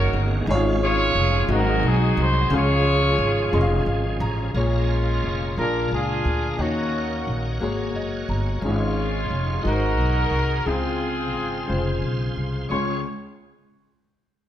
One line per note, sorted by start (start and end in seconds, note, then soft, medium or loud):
0.00 0.12 F#1 loud
0.00 0.46 D#3 medium
0.00 0.45 G#3 medium
0.00 0.48 G#3 medium
0.00 0.45 A#3 medium
0.00 0.28 C#4 medium
0.00 0.46 C#4 medium
0.00 0.28 F#4 medium
0.00 0.45 F#4 medium
0.00 0.47 F#4 medium
0.00 0.28 G#4 medium
0.00 0.29 A#4 medium
0.00 0.45 A#4 medium
0.00 0.20 C#5 loud
0.00 0.29 D#5 medium
0.13 0.45 G1 loud
0.47 1.12 G#1 loud
0.47 1.46 G#2 medium
0.47 4.51 G#3 medium
0.47 1.49 C#4 medium
0.47 0.55 D#4 medium
0.47 1.49 F4 medium
0.47 1.30 G#4 medium
0.47 1.31 C#5 loud
0.54 1.32 F4 loud
0.83 1.47 F4 medium
0.83 1.47 G#4 medium
0.83 1.47 C#5 loud
1.15 1.47 F1 medium
1.48 1.80 G#1 loud
1.48 2.48 G#2 medium
1.48 2.50 F#3 medium
1.48 2.50 C4 medium
1.48 2.50 D#4 medium
1.48 2.31 D#4 medium
1.48 2.49 D#4 medium
1.48 2.31 F#4 medium
1.48 2.49 F#4 medium
1.48 4.51 G#4 medium
1.48 2.32 G#4 medium
1.48 2.32 C5 medium
1.53 1.86 A#4 loud
1.53 1.58 F5 medium
1.59 2.36 F#5 medium
1.83 2.14 B1 medium
1.83 2.19 G#4 medium
2.17 2.49 C2 loud
2.22 2.54 C5 loud
2.49 3.15 C#2 loud
2.49 3.49 C#3 medium
2.49 4.52 F3 medium
2.49 4.52 C#4 medium
2.49 3.32 C#4 medium
2.49 3.33 F4 medium
2.49 3.33 G#4 medium
2.49 3.34 C6 medium
2.54 3.84 F4 medium
2.54 3.85 G#4 medium
2.54 3.85 C#5 loud
2.54 3.34 F5 medium
3.18 3.50 G#1 medium
3.52 3.84 F1 loud
3.52 4.34 C#4 medium
3.52 4.34 F4 medium
3.52 4.35 G#4 medium
3.52 3.60 D#5 medium
3.52 4.35 C6 medium
3.61 3.86 F5 loud
3.86 4.18 G#1 medium
3.86 4.19 F5 medium
4.20 4.52 A1 loud
4.20 4.53 A#5 medium
4.54 5.18 A#1 medium
4.54 5.53 A#2 medium
4.54 5.54 G#3 medium
4.54 5.36 A#3 medium
4.54 5.53 C#4 medium
4.54 5.36 F4 medium
4.54 5.53 F4 medium
4.54 6.56 G#4 medium
4.54 5.37 G#4 medium
4.54 5.55 C#5 medium
4.54 5.37 C#5 medium
4.54 6.56 F5 medium
4.54 6.56 A#5 medium
5.23 5.54 F1 medium
5.57 5.88 A#1 medium
5.57 6.55 A#2 medium
5.57 6.38 A#3 medium
5.57 5.92 D4 medium
5.57 6.38 F4 medium
5.57 5.92 F4 medium
5.57 6.39 G#4 medium
5.57 5.89 A#4 medium
5.57 6.57 D5 soft
5.57 6.40 D5 medium
5.92 6.22 C#2 medium
5.92 6.56 D4 medium
5.92 6.56 F4 medium
5.92 6.60 G#4 medium
6.25 6.56 D2 medium
6.57 7.22 D#2 medium
6.57 7.57 D#3 medium
6.57 7.39 A#3 medium
6.57 7.57 C#4 medium
6.57 7.40 D#4 medium
6.57 7.40 F#4 medium
6.57 8.61 A#4 medium
6.57 8.60 C#5 medium
6.57 7.41 C#5 medium
6.57 7.59 D#5 medium
6.57 8.60 F#5 medium
6.61 7.58 A#3 medium
6.61 7.36 F#4 medium
7.27 7.58 A#1 medium
7.60 7.93 G#1 medium
7.60 8.59 G#3 medium
7.60 8.41 A#3 medium
7.60 8.42 F#4 medium
7.60 8.42 G#4 medium
7.60 8.43 C#5 medium
7.60 8.61 G#5 soft
7.93 8.25 F#1 medium
7.93 8.26 D#5 medium
8.29 8.60 G1 medium
8.29 8.60 A#5 medium
8.61 9.26 G#1 loud
8.61 9.61 G#2 medium
8.61 9.44 G#3 medium
8.61 9.61 G#3 medium
8.61 9.44 C#4 medium
8.61 9.61 C#4 medium
8.61 9.62 G#4 medium
8.61 9.63 C#5 medium
8.61 9.62 F5 medium
8.65 9.45 F4 medium
8.65 9.63 F4 medium
8.65 9.45 C#5 medium
9.30 9.61 F1 medium
9.61 9.98 G#1 medium
9.61 10.62 G#2 medium
9.61 10.45 G#3 medium
9.61 10.45 D#4 medium
9.61 10.46 F#4 medium
9.61 12.67 G#4 medium
9.61 9.71 A#4 medium
9.61 10.64 D#5 soft
9.61 10.64 F#5 medium
9.61 12.67 C6 medium
9.66 10.63 D#4 medium
9.66 10.63 F#4 medium
9.66 10.68 A#4 medium
9.71 10.49 C5 medium
9.98 10.29 B1 medium
10.31 10.63 C2 medium
10.65 11.35 C#2 medium
10.65 11.65 C#3 medium
10.65 11.47 G#3 medium
10.65 11.48 C4 medium
10.65 11.99 C4 medium
10.65 10.73 E4 medium
10.65 11.99 F4 medium
10.65 12.03 G#4 medium
10.65 12.68 C5 medium
10.65 11.49 C5 medium
10.65 12.68 F5 medium
10.74 11.52 F4 medium
11.35 11.66 G#1 medium
11.66 12.00 F1 medium
11.66 12.49 C#3 medium
11.66 12.49 G#3 medium
11.66 12.50 F4 medium
11.66 12.50 C5 medium
12.02 12.33 B1 medium
12.36 12.67 C2 medium
12.68 13.02 C#2 medium
12.68 13.03 C#2 medium
12.68 13.01 G#3 medium
12.68 13.03 G#3 medium
12.68 13.01 C#4 medium
12.68 13.02 C#4 medium
12.68 13.01 F4 medium
12.68 13.02 F4 medium
12.68 13.01 G#4 medium
12.68 13.01 C#5 medium
12.68 13.02 C#5 medium
12.68 13.03 C6 medium